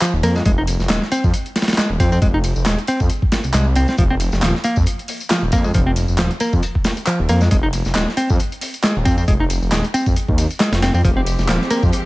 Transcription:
0.01 picked electric bass F3, clap, closed hi-hat, tambourine
0.13 detuned saw bass D#1
0.23 detuned saw bass F2, picked electric bass A#3, closed hi-hat, ride, tambourine
0.36 picked electric bass G#3, snare, tambourine
0.45 detuned saw bass F1, picked electric bass G#3, kick, closed hi-hat, tambourine
0.58 picked electric bass D#4
0.67 closed hi-hat, ride, tambourine
0.79 detuned saw bass F1, snare, tambourine
0.89 detuned saw bass D#1, picked electric bass G#3, snare, clap, closed hi-hat, tambourine
1.02 snare
1.12 picked electric bass C4, closed hi-hat, ride, tambourine
1.24 detuned saw bass F2, kick, tambourine
1.34 closed hi-hat, tambourine
1.46 closed hi-hat
1.56 snare, closed hi-hat, ride, tambourine
1.62 snare, closed hi-hat
1.68 snare, closed hi-hat, tambourine
1.73 snare, closed hi-hat
1.78 picked electric bass G#3, snare, clap, closed hi-hat, tambourine
1.90 detuned saw bass D#1
2.00 detuned saw bass F2, picked electric bass C4, kick, closed hi-hat, ride, tambourine
2.12 picked electric bass C4, tambourine
2.22 detuned saw bass F1, picked electric bass G#3, kick, closed hi-hat, tambourine
2.34 picked electric bass D#4
2.44 closed hi-hat, ride, tambourine
2.56 detuned saw bass F1, tambourine
2.66 detuned saw bass D#1, picked electric bass G#3, snare, clap, closed hi-hat, tambourine
2.78 closed hi-hat
2.87 picked electric bass C4, closed hi-hat, ride, tambourine
3.00 detuned saw bass F2, kick, tambourine
3.10 closed hi-hat, tambourine
3.22 kick
3.32 snare, closed hi-hat, ride, tambourine
3.44 detuned saw bass C2, closed hi-hat, tambourine
3.54 detuned saw bass C2, picked electric bass G#3, clap, closed hi-hat, tambourine
3.76 picked electric bass C4, closed hi-hat, ride, tambourine
3.88 picked electric bass C4, snare, tambourine
3.98 detuned saw bass F1, picked electric bass F3, kick, closed hi-hat, tambourine
4.10 picked electric bass C4
4.20 closed hi-hat, ride, tambourine
4.32 detuned saw bass F1, snare, tambourine
4.42 detuned saw bass D#1, picked electric bass F3, snare, clap, closed hi-hat, tambourine
4.55 snare
4.64 picked electric bass A#3, closed hi-hat, ride, tambourine
4.76 detuned saw bass F2, kick, tambourine
4.86 closed hi-hat, tambourine
4.99 closed hi-hat
5.08 open hi-hat, ride, tambourine
5.20 closed hi-hat, tambourine
5.30 picked electric bass F3, snare, clap, closed hi-hat, tambourine
5.42 detuned saw bass D#1
5.52 detuned saw bass F2, picked electric bass A#3, kick, closed hi-hat, ride, tambourine
5.64 picked electric bass G#3, tambourine
5.74 detuned saw bass F1, picked electric bass F3, kick, closed hi-hat, tambourine
5.87 picked electric bass C4
5.96 closed hi-hat, ride, tambourine
6.08 detuned saw bass F1, tambourine
6.18 detuned saw bass D#1, picked electric bass F3, snare, clap, closed hi-hat, tambourine
6.31 closed hi-hat
6.40 picked electric bass A#3, closed hi-hat, ride, tambourine
6.53 detuned saw bass F2, kick, tambourine
6.62 closed hi-hat, tambourine
6.75 kick
6.84 snare, closed hi-hat, ride, tambourine
6.97 closed hi-hat, tambourine
7.07 picked electric bass F3, clap, closed hi-hat, tambourine
7.19 detuned saw bass D#1
7.29 detuned saw bass F2, picked electric bass A#3, closed hi-hat, ride, tambourine
7.41 picked electric bass G#3, snare, tambourine
7.51 detuned saw bass F1, picked electric bass G#3, kick, closed hi-hat, tambourine
7.63 picked electric bass D#4
7.73 closed hi-hat, ride, tambourine
7.85 detuned saw bass F1, snare, tambourine
7.95 detuned saw bass D#1, picked electric bass G#3, snare, clap, closed hi-hat, tambourine
8.08 snare
8.17 picked electric bass C4, closed hi-hat, ride, tambourine
8.30 detuned saw bass F2, kick, tambourine
8.39 closed hi-hat, tambourine
8.52 closed hi-hat
8.61 open hi-hat, ride, tambourine
8.74 closed hi-hat, tambourine
8.83 picked electric bass G#3, snare, clap, closed hi-hat, tambourine
8.96 detuned saw bass D#1
9.05 detuned saw bass F2, picked electric bass C4, kick, closed hi-hat, ride, tambourine
9.18 picked electric bass C4, tambourine
9.28 detuned saw bass F1, picked electric bass G#3, kick, closed hi-hat, tambourine
9.40 picked electric bass D#4
9.50 closed hi-hat, ride, tambourine
9.62 detuned saw bass F1, tambourine
9.72 detuned saw bass D#1, picked electric bass G#3, snare, clap, closed hi-hat, tambourine
9.84 closed hi-hat
9.94 picked electric bass C4, closed hi-hat, ride, tambourine
10.06 detuned saw bass F2, kick, tambourine
10.16 closed hi-hat, tambourine
10.28 detuned saw bass D#2, kick
10.38 closed hi-hat, ride, tambourine
10.50 closed hi-hat, tambourine
10.60 picked electric bass G#3, snare, clap, closed hi-hat, tambourine
10.72 detuned saw bass F1, snare, closed hi-hat
10.82 picked electric bass C4, snare, closed hi-hat, ride, tambourine
10.94 detuned saw bass F2, picked electric bass C4, tambourine
11.04 detuned saw bass F1, string section F3 G#3 C4 G4, picked electric bass F3, kick, closed hi-hat, tambourine
11.17 picked electric bass C4
11.26 closed hi-hat, ride, tambourine
11.38 detuned saw bass F1, snare, tambourine
11.48 detuned saw bass D#1, picked electric bass F3, snare, clap, closed hi-hat, tambourine
11.61 snare
11.70 picked electric bass A#3, closed hi-hat, ride, tambourine
11.82 detuned saw bass F2, kick, tambourine
11.92 closed hi-hat, tambourine

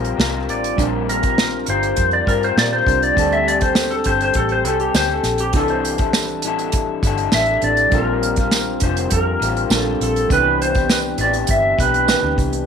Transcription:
Already playing: fingered electric bass A#1, clean electric guitar G3 C4 F4 A#4, synth keys G3 C4 D4 A#4, electric slide guitar A#4
0.04 closed hi-hat
0.17 fingered electric bass C2, clean electric guitar G3 C4 F4, snare
0.21 clean electric guitar A#4
0.33 clean electric guitar C4 F4 A#4
0.37 clean electric guitar G3
0.48 fingered electric bass A1, electric slide guitar D5, closed hi-hat
0.64 closed hi-hat
0.76 fingered electric bass A#1, clean electric guitar A#2 D3 G3 C4 F4 A#4, synth keys G3 C4 D4, kick, closed hi-hat
0.81 synth keys A#4
1.09 electric slide guitar A#4, closed hi-hat
1.22 clean electric guitar G3 C4 F4 A#4, kick, closed hi-hat
1.38 snare
1.66 fingered electric bass G1, clean electric guitar G3 C4 F4 A#4, electric slide guitar C5, closed hi-hat
1.83 closed hi-hat
1.96 fingered electric bass F2, kick, closed hi-hat
2.11 electric slide guitar D5, closed hi-hat
2.26 fingered electric bass G2, clean electric guitar G3 C4 F4 A#4, electric slide guitar A#4, kick, closed hi-hat
2.43 electric slide guitar C5, closed hi-hat
2.57 fingered electric bass A#2, clean electric guitar G3 C4 F4, electric slide guitar D5, snare
2.61 clean electric guitar A#4
2.72 clean electric guitar G3 C4 F4 A#4, electric slide guitar C5
2.86 fingered electric bass C2, synth keys G3 C4 D4 A#4, kick, closed hi-hat
3.02 electric slide guitar D5, closed hi-hat
3.14 fingered electric bass D2, clean electric guitar D3, synth keys G3 C4 D4, kick
3.18 clean electric guitar G3 C4 G4 A4, synth keys A4, closed hi-hat
3.32 electric slide guitar E5, closed hi-hat
3.48 electric slide guitar D5, closed hi-hat
3.61 clean electric guitar G4 A4, electric slide guitar C5, kick, closed hi-hat
3.65 clean electric guitar C4
3.75 snare, tambourine
3.91 electric slide guitar A4, closed hi-hat
4.04 fingered electric bass G1, clean electric guitar G3 C4 G4, electric slide guitar C5, kick, closed hi-hat
4.09 clean electric guitar A4
4.20 electric slide guitar C5, closed hi-hat
4.34 fingered electric bass A1, electric slide guitar A4, kick, closed hi-hat
4.49 electric slide guitar C5, closed hi-hat
4.64 fingered electric bass C2, clean electric guitar G3 C4 G4, electric slide guitar A4, closed hi-hat
4.68 clean electric guitar A4
4.80 electric slide guitar G4, closed hi-hat
4.94 fingered electric bass D2, clean electric guitar G3 C4 G4 A4, electric slide guitar C5, snare, tambourine
5.08 clean electric guitar A4, electric slide guitar A4, closed hi-hat
5.12 clean electric guitar C4 G4
5.23 fingered electric bass A#1, snare, closed hi-hat
5.38 electric slide guitar G4, closed hi-hat
5.52 fingered electric bass C2, clean electric guitar C3 E3 G3 D4, synth keys E3 C4 D4, kick, closed hi-hat
5.56 clean electric guitar E4 A4, electric slide guitar A4, synth keys A4
5.68 electric slide guitar C5, closed hi-hat
5.85 closed hi-hat
5.98 clean electric guitar D4 E4 A4, kick, closed hi-hat
6.02 clean electric guitar G3
6.13 snare, tambourine
6.28 closed hi-hat
6.42 fingered electric bass A1, clean electric guitar G3 D4, closed hi-hat
6.47 clean electric guitar E4 A4
6.59 closed hi-hat
6.72 kick, closed hi-hat
7.03 fingered electric bass G1, clean electric guitar G3 D4 E4, kick, closed hi-hat
7.07 clean electric guitar A4
7.18 closed hi-hat
7.32 fingered electric bass A1, clean electric guitar G3 D4 E4, electric slide guitar E5, snare, tambourine
7.36 clean electric guitar A4
7.45 clean electric guitar E4 A4, closed hi-hat
7.50 clean electric guitar G3 D4
7.61 fingered electric bass A1, synth keys E3 C4 D4 A4, electric slide guitar D5, closed hi-hat
7.77 closed hi-hat
7.90 fingered electric bass A#1, clean electric guitar A#2 D3 G3 C4, synth keys G3 C4 D4, kick, closed hi-hat
7.94 clean electric guitar F4, synth keys A#4, electric slide guitar A#4
8.23 closed hi-hat
8.36 clean electric guitar C4 F4, kick, closed hi-hat
8.40 clean electric guitar G3
8.51 snare, tambourine
8.80 fingered electric bass F1, clean electric guitar D3 G3 C4, electric slide guitar C5, kick, closed hi-hat
8.85 clean electric guitar F4
8.97 closed hi-hat
9.10 fingered electric bass F2, electric slide guitar A#4, kick, closed hi-hat
9.40 fingered electric bass A1, clean electric guitar D3 G3 C4, closed hi-hat
9.44 clean electric guitar F4
9.57 closed hi-hat
9.69 fingered electric bass A#1, clean electric guitar D3 G3 C4 F4, synth keys G3 C4 D4 A#4, snare, tambourine
9.75 electric slide guitar A4
9.84 clean electric guitar G3 C4 F4
10.00 fingered electric bass A#1, electric slide guitar A4, closed hi-hat
10.16 closed hi-hat
10.27 fingered electric bass C2, clean electric guitar C3 E3 B3 D4, synth keys D#3 C4 D4, kick, closed hi-hat
10.32 synth keys E3 B4, clean electric guitar G4, electric slide guitar B4
10.62 electric slide guitar C5, closed hi-hat
10.74 clean electric guitar B3 D4 G4, kick, closed hi-hat
10.90 electric slide guitar B4, snare, tambourine
11.18 fingered electric bass A1, clean electric guitar E3 B3 D4 G4, electric slide guitar D5, closed hi-hat
11.33 closed hi-hat
11.47 fingered electric bass G1, electric slide guitar E5, kick, closed hi-hat
11.78 fingered electric bass B1, clean electric guitar E3 B3 D4 G4, electric slide guitar B4, kick, closed hi-hat
11.94 closed hi-hat
12.07 clean electric guitar E3 B3 D4, synth keys E3 C4 D4 B4, snare, tambourine
12.11 clean electric guitar G4
12.21 fingered electric bass D2, clean electric guitar D4 G4
12.25 clean electric guitar B3
12.38 fingered electric bass C2, kick, closed hi-hat
12.53 closed hi-hat

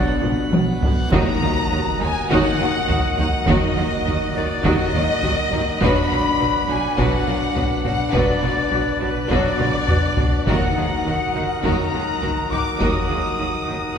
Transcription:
Already playing: viola section F#3 F#4, pipe organ B3 F#4 B4 F#5, french horn section D4, violin section D5 F#5, flute section D5, reverse cymbal
0.22 double bass section B1, cello section B2, viola section F3 F4, taiko mid
0.51 double bass section B1, cello section B2, viola section F#3 F#4, taiko high
0.82 double bass section B1, cello section B2, viola section D3 D4, taiko low
1.12 double bass section D#2, timpani D#3, cello section D#3, viola section F#3 D#4, french horn section F#3 D#4, pipe organ A#3 F#4 D#5 F#5, violin section F#4 A#5, flute section A#5, taiko, sub drop
1.41 double bass section D#2, cello section D#3, viola section F#3 D#4, violin section F4
1.71 double bass section D#2, cello section D#3, viola section F#3 D#4, violin section F#4
2.00 double bass section D#2, cello section D#3, viola section F#3 D#4, violin section D#4 G#5, flute section G#5
2.29 double bass section D#2, cello section D#3, viola section F#3 D#4, french horn section F#3 D#4, violin section F#4 F#5, flute section F#5, taiko
2.59 double bass section D#2, cello section D#3, viola section F#3 D#4, violin section F4
2.88 double bass section D#2, cello section D#3, viola section F#3 D#4, violin section F#4, taiko low
3.18 double bass section D#2, cello section D#3, viola section F#3 D#4, violin section D#4 F#5, flute section F#5, taiko low
3.46 double bass section D#2, cello section D#3, french horn section F#3 D#4, viola section F#3 D#4, violin section F#4 D#5, taiko
3.50 flute section D#5
3.76 double bass section D#2, cello section D#3, viola section F#3 D#4, violin section F4
4.06 double bass section D#2, cello section D#3, viola section F#3 D#4, violin section F#4
4.35 double bass section D#2, cello section D#3, viola section F#3 D#4, violin section D#4 D5, flute section D5
4.63 double bass section D#2, cello section D#3, french horn section F#3 D#4, viola section F#3 D#4, violin section F#4 D#5, flute section D#5, taiko
4.93 double bass section D#2, cello section D#3, viola section F#3 D#4, violin section F4
5.23 double bass section D#2, cello section D#3, viola section F#3 D#4, violin section F#4, taiko low
5.52 double bass section D#2, cello section D#3, viola section F#3 D#4, violin section D#4, taiko low
5.81 double bass section B1, cello section B2, french horn section F#3 D4, viola section F#3 D4, pipe organ D4 F#4 B4 F#5, violin section F#4 B4 B5, flute section B5, taiko
6.11 double bass section B1, cello section B2, viola section F#3 D4, violin section F4 A#4
6.40 double bass section B1, cello section B2, viola section F#3 D4, violin section F#4 B4
6.68 double bass section B1, cello section B2, viola section F#3 D4, violin section D4 F#4 G#5, flute section G#5
6.97 double bass section B1, cello section B2, french horn section F#3 D4, viola section F#3 D4, violin section F#4 B4 F#5, flute section F#5, taiko
7.26 double bass section B1, cello section B2, viola section F#3 D4, violin section F4 A#4
7.54 double bass section B1, cello section B2, viola section F#3 D4, violin section F#4 B4, taiko low
7.84 double bass section B1, cello section B2, viola section F#3 D4, violin section D4 F#4 F#5, flute section F#5, taiko low
8.11 double bass section B1, cello section B2, french horn section F#3 D4, viola section F#3 D4, violin section F#4 B4 D5, flute section D5, taiko
8.41 double bass section B1, cello section B2, viola section F#3 D4, violin section F4 A#4
8.71 double bass section B1, cello section B2, viola section F#3 D4, violin section F#4 B4
9.00 double bass section B1, cello section B2, viola section F#3 D4, violin section D4 F#4 B4, flute section B4
9.30 double bass section B1, cello section B2, viola section F#3 D4, french horn section F#3 D4, violin section F#4 B4 D5, flute section D5, taiko
9.59 double bass section B1, cello section B2, viola section F#3 D4, violin section F4 A#4, taiko mid
9.88 double bass section B1, cello section B2, viola section F#3 D4, violin section F#4 B4, taiko low-mid
10.17 double bass section B1, cello section B2, viola section F#3 D4, violin section D4 F#4, taiko low
10.45 double bass section D#2, timpani D#3, cello section D#3, french horn section F#3 A#3, viola section F#3 D#4, pipe organ D#4 F#4 A#4 F#5, violin section F#4 A#4 F#5, flute section F#5, taiko
10.76 double bass section D#2, cello section D#3, viola section F#3 D#4, violin section F4 G#4
11.04 double bass section D#2, cello section D#3, viola section F#3 D#4, violin section F#4 A#4
11.33 double bass section D#2, cello section D#3, viola section F#3 D#4, violin section D#4 F#4
11.62 double bass section D#2, cello section D#3, viola section F#3 D#4, french horn section F#3 A#3, violin section F#4 A#4 A#5, flute section A#5, taiko
11.92 double bass section D#2, cello section D#3, viola section F#3 D#4, violin section F4 G#4
12.21 double bass section D#2, cello section D#3, viola section F#3 D#4, violin section F#4 A#4, taiko low
12.49 double bass section D#2, cello section D#3, viola section F#3 D#4, violin section D#4 F#4 D6, flute section D6, taiko low
12.78 double bass section D#2, cello section D#3, viola section F#3 D#4, french horn section F#3 A#3, violin section F#4 A#4 D#6, flute section D#6, taiko
13.09 double bass section D#2, cello section D#3, viola section F#3 D#4, violin section F4 G#4
13.39 double bass section D#2, cello section D#3, viola section F#3 D#4, violin section F#4 A#4
13.67 double bass section D#2, cello section D#3, viola section F#3 D#4, violin section D#4 F#4

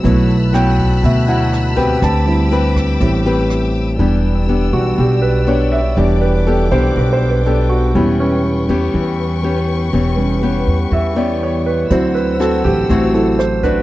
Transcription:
Already playing: string section E6
0.03 upright bass B1, nylon-string guitar B2 F#3 B3 E4, grand piano F#3 A3 B3 E4, string section A5 B5 F#6, kick, closed hi-hat
0.30 closed hi-hat
0.53 nylon-string guitar F#3 B3 E4, grand piano G5, cross-stick, closed hi-hat
0.79 kick, closed hi-hat
1.03 upright bass D2, nylon-string guitar B2, grand piano E5, kick, closed hi-hat
1.27 nylon-string guitar F#3 B3 E4, grand piano F#5, closed hi-hat
1.53 cross-stick, closed hi-hat
1.76 nylon-string guitar C4 G4 B4, grand piano G5, kick, closed hi-hat
2.01 upright bass D2, nylon-string guitar D3, string section G5 D6, grand piano A5, kick, cross-stick, closed hi-hat
2.26 grand piano G3 C4 E4, closed hi-hat
2.51 nylon-string guitar C4 G4 B4, closed hi-hat
2.76 kick, cross-stick, closed hi-hat
3.00 upright bass A1, nylon-string guitar A2, grand piano G3 B3 C4 E4, kick, closed hi-hat
3.25 nylon-string guitar C4 G4 B4, closed hi-hat
3.50 cross-stick, closed hi-hat
3.75 closed hi-hat
3.98 upright bass E1, nylon-string guitar E3 B3 D4 G4, grand piano G3 D4, string section D5 G5 E6
4.49 nylon-string guitar B3 D4 G4
4.72 upright bass B1, grand piano G3 D4 F#4
4.98 upright bass B1, nylon-string guitar B2, grand piano G4
5.22 grand piano B4
5.47 nylon-string guitar B3 D4 G4, grand piano C#5
5.72 grand piano E5
5.96 upright bass E1, nylon-string guitar E3 B3 D4 G4, grand piano G3 D4 D5, string section D6
6.21 grand piano B4
6.47 nylon-string guitar B3 D4 G4, grand piano A4
6.71 upright bass B1, nylon-string guitar B3 D4 G4, grand piano C5
6.96 upright bass B1, nylon-string guitar B2, grand piano B4
7.13 grand piano C5
7.29 grand piano B4
7.46 nylon-string guitar B3 D4 G4, grand piano A4
7.69 grand piano F#4
7.94 upright bass E1, nylon-string guitar E3 B3 C#4 G4, grand piano G3 B3 C#4 E4, string section B4 C#6
8.20 grand piano C#4
8.69 upright bass E2, nylon-string guitar B3 C#4 G4
8.94 upright bass E2, nylon-string guitar E3
9.43 nylon-string guitar B3 C#4 G4
9.93 upright bass E1, nylon-string guitar E3 B3 C#4 G4
10.16 grand piano G3 B3 C#4
10.43 nylon-string guitar B3 C#4 G4
10.67 upright bass E2
10.91 upright bass E2, nylon-string guitar E3, grand piano E5
11.16 nylon-string guitar B3 C#4 G4, grand piano D5
11.43 grand piano C#5
11.66 grand piano B4
11.90 upright bass D2, nylon-string guitar D3 C4 E4 F#4, grand piano F#3 C4 E4 C5, string section C5 F#5 E6, kick, closed hi-hat
12.14 grand piano B4, closed hi-hat
12.40 nylon-string guitar C4 E4 F#4, grand piano A4, cross-stick, closed hi-hat
12.64 upright bass A1, grand piano G4, kick, closed hi-hat
12.89 upright bass A1, nylon-string guitar A3 C4 E4 F#4, grand piano F#4, kick, closed hi-hat
13.13 grand piano F#3 C4 E4 A4, closed hi-hat
13.39 grand piano C5, cross-stick, closed hi-hat
13.63 nylon-string guitar A3 D4 F#4, grand piano B4, kick, closed hi-hat

